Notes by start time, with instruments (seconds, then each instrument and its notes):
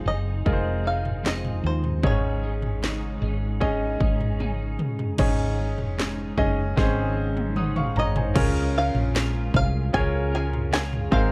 Already playing: grand piano D#4 F4 G#4 C5
0.06 fretless electric bass F#1, clean electric guitar C4 D#4 G#4, five-string banjo D#5
0.46 fretless electric bass F1, clean electric guitar G#3 C4 D#4 G#4, grand piano D#4 F4 G#4 A#4, kick
0.53 grand piano C5
0.84 clean electric guitar C4 D#4 G#4, five-string banjo F5
1.05 floor tom
1.23 clean electric guitar F3 G#3 C4 D#4 G#4, five-string banjo D#5, snare
1.45 floor tom
1.64 fretless electric bass D#2, five-string banjo C5
1.84 floor tom
2.02 fretless electric bass G#1, clean electric guitar G#2 C#3 G#3 C#4 D#4 G#4, grand piano G#2 C#4 D#4 G#4 C#5, kick, floor tom
2.07 five-string banjo C#5
2.42 clean electric guitar G#3 C#4 D#4 G#4
2.62 floor tom
2.82 clean electric guitar G#2 C#3 G#3 C#4 D#4 G#4, snare
3.21 fretless electric bass G#1, clean electric guitar G#3 C#4 D#4 G#4
3.60 clean electric guitar G#3 C#4 D#4 G#4, grand piano C#4 D#4 G#4 D#5, kick
4.00 fretless electric bass G#1, clean electric guitar G#3 C#4 D#4 G#4, kick
4.21 floor tom
4.39 clean electric guitar G#2 C#3 G#3 C#4 D#4 G#4, high tom
4.79 mid tom
4.99 floor tom
5.18 fretless electric bass G#1, clean electric guitar G#2 C#3 G#3 C#4 D#4 G#4, grand piano G#2 C#4 D#4 G#4 C#5, kick, floor tom, crash
5.58 clean electric guitar G#3 C#4 D#4 G#4
5.78 fretless electric bass F1, floor tom
5.98 clean electric guitar G#3 C#4 D#4 G#4, snare
6.37 fretless electric bass F#1, grand piano C#4 D#4 G#4 D#5, kick, floor tom
6.76 fretless electric bass G#1, clean electric guitar G#2 C#3 G#3 C#4 D#4 G#4, grand piano C4 D#4 G#4 C5, kick, snare
6.83 grand piano C#4
7.37 high tom
7.55 clean electric guitar G#3 C#4 D#4 G#4, grand piano F#5 D#6, mid tom
7.76 grand piano F5 C#6, mid tom
7.96 fretless electric bass G#1, grand piano C#5 A#5, five-string banjo D#5, floor tom
8.16 grand piano C5 G#5, floor tom
8.34 fretless electric bass C#2, clean electric guitar C#3 G#3 C#4 F4 A#4, grand piano C#3 C#4 F4 G#4 A#4 C#5, kick, floor tom, crash
8.74 clean electric guitar C#4 F4 A#4
8.78 five-string banjo F5
8.95 fretless electric bass A#1, floor tom
9.14 clean electric guitar G#3 C#4 F4 A#4, snare
9.54 fretless electric bass C2, five-string banjo F5, kick, floor tom
9.93 fretless electric bass C#2, clean electric guitar G#3 C#4 F4 A#4, grand piano C#4 F4 G#4 A#4 C#5, five-string banjo G#4 G#5, kick, floor tom
10.31 clean electric guitar C#4 F4 A#4, five-string banjo G#5
10.36 five-string banjo G#4
10.53 floor tom
10.71 clean electric guitar C#3 G#3 C#4 F4 A#4, five-string banjo G#4 G#5, snare
10.93 floor tom
11.11 fretless electric bass G#1, grand piano G#2 C4 D#4 G#4 A#4 C5, clean electric guitar G#3 C4 D#4 A#4, five-string banjo F5, kick